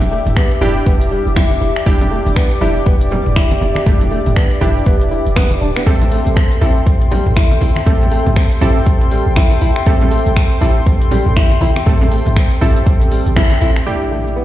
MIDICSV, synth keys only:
0, 0, Header, 1, 2, 480
1, 0, Start_track
1, 0, Key_signature, 0, "minor"
1, 0, Tempo, 500000
1, 1790, Time_signature, 4, 2, 24, 8
1, 13869, End_track
2, 0, Start_track
2, 0, Title_t, "Synth keys"
2, 0, Program_c, 0, 88
2, 0, Note_on_c, 0, 62, 78
2, 0, Note_on_c, 0, 64, 72
2, 0, Note_on_c, 0, 67, 88
2, 567, Note_off_c, 0, 62, 0
2, 567, Note_off_c, 0, 64, 0
2, 567, Note_off_c, 0, 67, 0
2, 590, Note_on_c, 0, 62, 94
2, 590, Note_on_c, 0, 64, 88
2, 590, Note_on_c, 0, 67, 106
2, 1767, Note_off_c, 0, 62, 0
2, 1767, Note_off_c, 0, 64, 0
2, 1767, Note_off_c, 0, 67, 0
2, 1788, Note_on_c, 0, 62, 93
2, 1788, Note_on_c, 0, 64, 86
2, 1788, Note_on_c, 0, 67, 102
2, 2486, Note_off_c, 0, 62, 0
2, 2486, Note_off_c, 0, 64, 0
2, 2486, Note_off_c, 0, 67, 0
2, 2508, Note_on_c, 0, 64, 68
2, 2509, Note_on_c, 0, 62, 74
2, 2509, Note_on_c, 0, 67, 81
2, 3686, Note_off_c, 0, 62, 0
2, 3686, Note_off_c, 0, 64, 0
2, 3686, Note_off_c, 0, 67, 0
2, 3709, Note_on_c, 0, 67, 88
2, 3710, Note_on_c, 0, 62, 80
2, 3710, Note_on_c, 0, 64, 74
2, 4407, Note_off_c, 0, 62, 0
2, 4407, Note_off_c, 0, 64, 0
2, 4407, Note_off_c, 0, 67, 0
2, 4429, Note_on_c, 0, 62, 94
2, 4430, Note_on_c, 0, 64, 86
2, 4430, Note_on_c, 0, 67, 104
2, 5607, Note_off_c, 0, 62, 0
2, 5607, Note_off_c, 0, 64, 0
2, 5607, Note_off_c, 0, 67, 0
2, 5630, Note_on_c, 0, 60, 94
2, 5630, Note_on_c, 0, 67, 82
2, 5630, Note_on_c, 0, 69, 101
2, 6327, Note_off_c, 0, 60, 0
2, 6327, Note_off_c, 0, 67, 0
2, 6327, Note_off_c, 0, 69, 0
2, 6349, Note_on_c, 0, 60, 73
2, 6349, Note_on_c, 0, 67, 69
2, 6349, Note_on_c, 0, 69, 82
2, 7526, Note_off_c, 0, 67, 0
2, 7526, Note_off_c, 0, 69, 0
2, 7527, Note_off_c, 0, 60, 0
2, 7549, Note_on_c, 0, 60, 81
2, 7549, Note_on_c, 0, 67, 75
2, 7549, Note_on_c, 0, 69, 89
2, 8246, Note_off_c, 0, 60, 0
2, 8246, Note_off_c, 0, 67, 0
2, 8247, Note_off_c, 0, 69, 0
2, 8270, Note_on_c, 0, 60, 96
2, 8270, Note_on_c, 0, 67, 88
2, 8270, Note_on_c, 0, 69, 104
2, 9447, Note_off_c, 0, 60, 0
2, 9447, Note_off_c, 0, 67, 0
2, 9447, Note_off_c, 0, 69, 0
2, 9470, Note_on_c, 0, 60, 93
2, 9470, Note_on_c, 0, 67, 86
2, 9470, Note_on_c, 0, 69, 101
2, 10167, Note_off_c, 0, 60, 0
2, 10167, Note_off_c, 0, 67, 0
2, 10167, Note_off_c, 0, 69, 0
2, 10190, Note_on_c, 0, 60, 74
2, 10190, Note_on_c, 0, 67, 69
2, 10190, Note_on_c, 0, 69, 84
2, 11367, Note_off_c, 0, 60, 0
2, 11367, Note_off_c, 0, 67, 0
2, 11367, Note_off_c, 0, 69, 0
2, 11389, Note_on_c, 0, 67, 73
2, 11390, Note_on_c, 0, 60, 81
2, 11390, Note_on_c, 0, 69, 92
2, 12087, Note_off_c, 0, 60, 0
2, 12087, Note_off_c, 0, 67, 0
2, 12087, Note_off_c, 0, 69, 0
2, 12109, Note_on_c, 0, 69, 108
2, 12110, Note_on_c, 0, 60, 96
2, 12110, Note_on_c, 0, 67, 88
2, 13287, Note_off_c, 0, 60, 0
2, 13287, Note_off_c, 0, 67, 0
2, 13287, Note_off_c, 0, 69, 0
2, 13309, Note_on_c, 0, 62, 82
2, 13309, Note_on_c, 0, 64, 74
2, 13309, Note_on_c, 0, 67, 90
2, 13869, Note_off_c, 0, 62, 0
2, 13869, Note_off_c, 0, 64, 0
2, 13869, Note_off_c, 0, 67, 0
2, 13869, End_track
0, 0, End_of_file